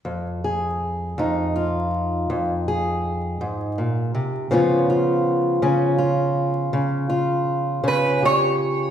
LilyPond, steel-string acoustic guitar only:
\new Staff \with { instrumentName = "Steel-string acoustic guitar" } { \time 12/8 \key f \minor \tempo 4. = 54 << { r8 aes'4 ees'8 f'4. aes'2~ aes'8 | <f ces' des' f'>8 f'4 des'8 f'4. f'4 des'8 g'4 | } \\ { f,4. f,4. f,4. aes,8 bes,8 c8 | des4. des4. des4. des4. | } >> }